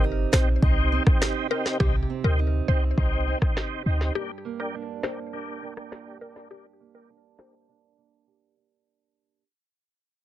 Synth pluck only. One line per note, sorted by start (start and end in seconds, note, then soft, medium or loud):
0.33 0.53 C5 medium
1.51 1.60 A#4 medium
1.80 1.90 G4 loud
2.24 2.44 A#4 medium
2.68 2.88 C5 medium
4.15 4.25 G4 loud
4.60 4.79 A#4 medium
5.04 5.23 C5 medium
6.21 6.31 A#4 medium
6.51 6.60 G4 loud
6.95 7.14 A#4 medium
7.39 7.58 C5 medium